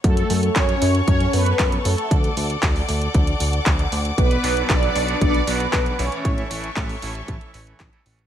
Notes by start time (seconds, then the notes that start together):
0.04 F#2 A3 A4 C#5 F#5 C#6, kick, closed hi-hat
0.17 closed hi-hat
0.30 F#2, open hi-hat
0.43 closed hi-hat
0.56 F#2 C#4 C#5, kick, clap, closed hi-hat
0.69 closed hi-hat
0.82 F#2, open hi-hat
0.95 closed hi-hat
1.07 F#2 C#4 C#5, kick, closed hi-hat
1.20 closed hi-hat
1.33 F#2 B3 B4, open hi-hat
1.46 closed hi-hat
1.59 F#2, kick, clap, closed hi-hat
1.72 closed hi-hat
1.85 F#2 A3 A4, open hi-hat
1.98 closed hi-hat
2.11 D2 D5 D6, kick, closed hi-hat
2.24 closed hi-hat
2.37 D2, open hi-hat
2.50 closed hi-hat
2.63 D2, kick, clap, closed hi-hat
2.76 open hi-hat
2.89 D2, open hi-hat
3.02 closed hi-hat
3.14 D2, kick, closed hi-hat
3.27 closed hi-hat
3.40 D2, open hi-hat
3.53 closed hi-hat
3.66 D2, kick, clap, closed hi-hat
3.79 closed hi-hat
3.92 D2, open hi-hat
4.05 closed hi-hat
4.18 B1 B3 B4 D5, kick, closed hi-hat
4.31 closed hi-hat
4.43 B1 F#3 B3 D4 F#4, open hi-hat
4.57 closed hi-hat
4.70 B1 D4 D5, kick, clap, closed hi-hat
4.83 closed hi-hat
4.95 B1 F#3 B3 D4 F#4, open hi-hat
5.08 closed hi-hat
5.21 B1 D4 D5, kick, closed hi-hat
5.34 closed hi-hat
5.47 B1 F#3 B3 D4 F#4 B4, open hi-hat
5.60 closed hi-hat
5.73 B1, kick, clap, closed hi-hat
5.86 closed hi-hat
5.99 B1 E3 A3 C#4 E4 C#5, open hi-hat
6.12 closed hi-hat
6.25 A1 A4 C#5 E5 C#6, kick, closed hi-hat
6.38 closed hi-hat
6.50 A1 E3 A3 C#4 E4, open hi-hat
6.64 closed hi-hat
6.77 A1, kick, clap, closed hi-hat
6.89 open hi-hat
7.02 A1 E3 A3 C#4 E4, open hi-hat
7.15 closed hi-hat
7.28 A1, kick, closed hi-hat
7.41 closed hi-hat
7.54 A1 E3 A3 C#4 E4, open hi-hat
7.67 closed hi-hat
7.80 A1, kick, clap, closed hi-hat
7.93 E3 A3 C#4 E4, closed hi-hat
8.05 A1 E3 A3 C#4 F#4, open hi-hat
8.19 closed hi-hat